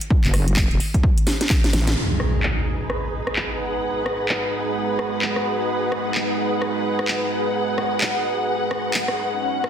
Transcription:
0.01 closed hi-hat medium
0.10 kick loud
0.24 0.69 F#1 loud
0.24 clap soft
0.24 closed hi-hat soft
0.34 cross-stick medium
0.34 open hi-hat loud
0.48 closed hi-hat medium
0.56 kick loud
0.56 clap loud
0.71 0.79 E1 loud
0.71 closed hi-hat soft
0.80 open hi-hat medium
0.94 kick medium
0.94 closed hi-hat medium
1.03 kick loud
1.18 closed hi-hat medium
1.27 snare medium
1.27 open hi-hat loud
1.41 snare medium
1.41 closed hi-hat medium
1.50 kick loud
1.50 snare medium
1.50 clap loud
1.64 snare medium
1.64 closed hi-hat medium
1.73 1.95 A1 medium
1.73 snare medium
1.73 open hi-hat medium
1.87 snare medium
1.87 closed hi-hat medium
1.97 9.37 G#3 medium
1.97 9.70 D#4 medium
1.97 9.37 F#4 medium
1.97 9.37 B4 medium
1.97 crash medium
1.97 impact medium
2.03 9.41 G#4 medium
2.20 cross-stick medium
2.43 clap loud
2.73 9.70 B4 medium
2.90 cross-stick medium
3.27 cross-stick medium
3.36 clap loud
3.57 9.70 F#5 medium
4.06 cross-stick medium
4.29 clap loud
4.99 cross-stick medium
5.22 clap loud
5.36 cross-stick medium
5.92 cross-stick medium
6.15 clap loud
6.62 cross-stick medium
6.99 cross-stick medium
7.08 clap loud
7.78 cross-stick medium
8.01 clap loud
8.71 cross-stick medium
8.94 clap loud
9.08 cross-stick medium
9.41 9.70 C#4 medium
9.64 cross-stick medium

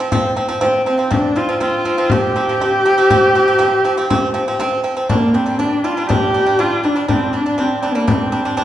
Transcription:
0.00 0.10 F3 medium
0.00 0.10 C4 medium
0.12 0.32 F3 loud
0.12 0.32 C4 loud
0.12 frame drum medium
0.36 0.46 F3 medium
0.36 0.47 C4 medium
0.48 0.59 F3 medium
0.48 0.59 C4 medium
0.48 frame drum soft
0.61 0.81 F3 loud
0.61 0.81 C4 loud
0.61 frame drum medium
0.86 0.96 F3 medium
0.86 0.96 C4 medium
0.86 1.14 C4 medium
0.98 1.08 F3 medium
0.98 1.09 C4 medium
1.11 1.31 F3 medium
1.11 1.31 C4 medium
1.11 1.38 D4 medium
1.11 frame drum medium
1.36 1.46 F3 medium
1.36 1.46 C4 medium
1.36 1.60 F4 medium
1.36 frame drum soft
1.49 1.59 F3 medium
1.49 1.58 C4 medium
1.60 1.81 F3 medium
1.60 1.81 C4 medium
1.60 2.13 F4 medium
1.60 frame drum soft
1.85 1.95 F3 medium
1.85 1.96 C4 medium
1.85 frame drum soft
1.98 2.08 F3 medium
1.98 2.08 C4 medium
2.10 2.31 F3 medium
2.10 2.31 C4 medium
2.10 4.60 G4 loud
2.10 frame drum medium
2.36 2.46 F3 medium
2.36 2.46 C4 medium
2.48 2.58 F3 medium
2.48 2.59 C4 medium
2.48 frame drum soft
2.60 2.81 F3 medium
2.60 2.81 C4 loud
2.60 frame drum soft
2.85 2.95 F3 medium
2.85 2.95 C4 medium
2.97 3.08 F3 medium
2.97 3.08 C4 medium
3.10 3.30 F3 loud
3.10 3.30 C4 loud
3.10 frame drum medium
3.35 3.45 F3 medium
3.35 3.45 C4 medium
3.35 frame drum soft
3.48 3.57 F3 medium
3.48 3.58 C4 medium
3.58 3.79 F3 loud
3.58 3.79 C4 loud
3.58 frame drum soft
3.85 3.95 F3 medium
3.85 3.95 C4 medium
3.85 frame drum soft
3.97 4.07 F3 medium
3.97 4.07 C4 medium
4.10 4.30 F3 medium
4.10 4.30 C4 loud
4.10 frame drum medium
4.34 4.44 F3 medium
4.34 4.44 C4 medium
4.48 4.57 F3 medium
4.48 4.57 C4 medium
4.48 frame drum soft
4.59 4.79 F3 loud
4.59 4.80 C4 loud
4.59 frame drum medium
4.84 4.94 F3 medium
4.84 4.94 C4 medium
4.97 5.07 F3 medium
4.97 5.07 C4 medium
5.09 5.29 G3 medium
5.09 5.37 A#3 medium
5.09 5.29 D4 loud
5.09 frame drum medium
5.34 5.44 G3 medium
5.34 5.60 C4 medium
5.34 5.44 D4 medium
5.34 frame drum soft
5.46 5.56 G3 medium
5.46 5.56 D4 medium
5.58 5.79 G3 medium
5.58 5.86 D4 medium
5.58 5.79 D4 loud
5.58 frame drum soft
5.84 5.94 G3 medium
5.84 5.94 D4 medium
5.84 6.09 F4 medium
5.84 frame drum soft
5.97 6.07 G3 medium
5.97 6.07 D4 medium
6.09 6.29 G3 medium
6.09 6.29 D4 medium
6.09 6.62 G4 loud
6.09 frame drum medium
6.34 6.44 G3 medium
6.34 6.44 D4 medium
6.46 6.56 G3 medium
6.46 6.56 D4 medium
6.59 6.79 G3 medium
6.59 6.79 D4 medium
6.59 6.87 F4 loud
6.59 frame drum soft
6.83 6.93 G3 medium
6.83 6.94 D4 medium
6.83 7.09 D4 medium
6.83 frame drum soft
6.96 7.06 G3 medium
6.96 7.06 D4 medium
7.08 7.28 G3 medium
7.08 7.38 C4 medium
7.08 7.28 D4 medium
7.08 frame drum medium
7.33 7.43 G3 medium
7.33 7.43 D4 medium
7.33 7.62 D4 medium
7.33 frame drum soft
7.46 7.56 G3 medium
7.46 7.56 D4 medium
7.58 7.78 G3 medium
7.58 7.88 C4 medium
7.58 7.78 D4 medium
7.58 frame drum soft
7.83 7.93 G3 medium
7.83 7.93 D4 medium
7.83 frame drum soft
7.87 8.10 A#3 medium
7.95 8.05 G3 medium
7.95 8.05 D4 medium
8.07 8.28 G3 medium
8.07 8.64 C4 medium
8.07 8.28 D4 medium
8.07 frame drum medium
8.32 8.43 G3 medium
8.32 8.42 D4 medium
8.45 8.55 G3 medium
8.45 8.55 D4 medium
8.57 8.64 G3 medium
8.57 8.64 D4 medium
8.57 frame drum medium

